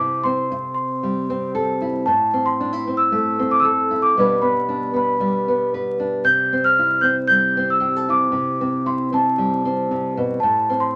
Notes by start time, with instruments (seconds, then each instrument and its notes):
Already playing: nylon-string guitar C3 C4 E4 A4, celesta D6
0.24 nylon-string guitar C4, celesta C6
0.51 muted nylon-string guitar stroke
0.74 celesta C6
1.03 nylon-string guitar G3
1.30 nylon-string guitar C4
1.55 nylon-string guitar A4
1.82 nylon-string guitar E4
2.06 nylon-string guitar A2, celesta A5
2.33 nylon-string guitar C4
2.46 celesta C6
2.60 nylon-string guitar D4
2.73 nylon-string guitar E4
2.87 nylon-string guitar C4
2.97 celesta E6
3.12 nylon-string guitar A3
3.39 nylon-string guitar C4
3.51 celesta D6
3.60 celesta E6
3.64 nylon-string guitar A4
3.91 nylon-string guitar E4
4.02 celesta D6
4.17 nylon-string guitar B2 G3 B3 D4 B4
4.42 nylon-string guitar B3, celesta B5
4.69 nylon-string guitar D4
4.94 nylon-string guitar B3, celesta B5
5.20 nylon-string guitar G3
5.48 nylon-string guitar B3
5.74 nylon-string guitar B4
6.00 nylon-string guitar D4
6.24 nylon-string guitar C3, celesta G6
6.53 nylon-string guitar C4
6.64 celesta F6
6.79 nylon-string guitar E4
7.01 nylon-string guitar C4, celesta G6
7.28 nylon-string guitar G3, celesta G6
7.57 nylon-string guitar C4
7.70 celesta E6
7.80 nylon-string guitar G4
7.96 nylon-string guitar A4
8.09 nylon-string guitar E4, celesta D6
8.32 nylon-string guitar C3
8.61 nylon-string guitar C4
8.86 nylon-string guitar E4, celesta C6
9.12 nylon-string guitar C4, celesta A5
9.38 nylon-string guitar G3
9.65 nylon-string guitar C4
9.91 nylon-string guitar C3
10.17 nylon-string guitar B2
10.40 nylon-string guitar A2, celesta A5
10.70 nylon-string guitar C4
10.80 celesta C6